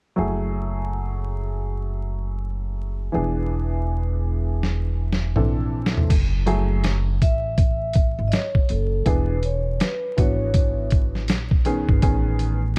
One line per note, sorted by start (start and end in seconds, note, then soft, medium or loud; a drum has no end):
0.16 3.10 F#1 medium
0.16 3.09 F#3 medium
0.16 3.10 A3 medium
0.16 3.10 E4 medium
0.16 3.10 G#4 medium
3.12 5.32 E1 medium
3.12 5.31 E3 medium
3.12 5.32 B3 medium
3.12 5.32 D4 medium
3.12 5.33 G#4 medium
4.63 snare medium
5.13 snare medium
5.36 6.07 A#1 medium
5.36 6.10 E3 medium
5.36 6.10 C4 medium
5.36 6.10 D4 medium
5.36 6.11 A4 medium
5.36 mid tom medium
5.86 snare medium
5.97 floor tom medium
6.10 7.17 F#1 loud
6.10 kick loud
6.10 closed hi-hat loud
6.10 crash medium
6.46 6.93 F#3 medium
6.46 6.93 A3 medium
6.46 6.93 E4 medium
6.46 6.93 G#4 medium
6.46 closed hi-hat medium
6.84 snare medium
6.84 closed hi-hat medium
7.22 8.15 A1 medium
7.22 8.31 E5 loud
7.22 kick medium
7.22 closed hi-hat medium
7.58 kick medium
7.58 closed hi-hat medium
7.93 kick medium
7.93 closed hi-hat medium
8.19 8.31 G#1 medium
8.28 8.33 D#5 medium
8.28 closed hi-hat medium
8.33 8.71 C#5 medium
8.33 snare medium
8.55 kick medium
8.69 9.03 F#1 medium
8.69 9.08 A4 medium
8.69 closed hi-hat medium
9.05 9.77 E1 medium
9.05 9.34 E3 medium
9.05 9.35 B3 medium
9.05 9.35 D4 medium
9.05 9.35 G#4 medium
9.05 9.45 B4 medium
9.05 kick loud
9.05 closed hi-hat medium
9.43 9.82 C#5 medium
9.43 closed hi-hat medium
9.80 10.19 B4 medium
9.80 snare medium
9.80 closed hi-hat medium
10.17 11.29 G#1 medium
10.17 11.23 E3 medium
10.17 11.23 B3 medium
10.17 11.23 D4 medium
10.17 11.23 F#4 medium
10.17 10.89 C#5 medium
10.17 kick medium
10.17 closed hi-hat medium
10.54 kick loud
10.54 closed hi-hat medium
10.90 kick medium
10.90 closed hi-hat medium
11.15 snare soft
11.28 11.85 A#1 medium
11.28 snare loud
11.28 closed hi-hat medium
11.51 kick medium
11.65 12.01 D#3 medium
11.65 12.01 B3 medium
11.65 12.01 C#4 medium
11.65 12.02 G#4 medium
11.65 closed hi-hat medium
11.89 12.02 G1 medium
11.89 kick medium
12.02 12.79 A1 loud
12.02 12.58 D#3 medium
12.02 12.58 B3 medium
12.02 12.58 C#4 medium
12.02 12.58 G#4 medium
12.02 kick loud
12.02 closed hi-hat loud
12.39 closed hi-hat medium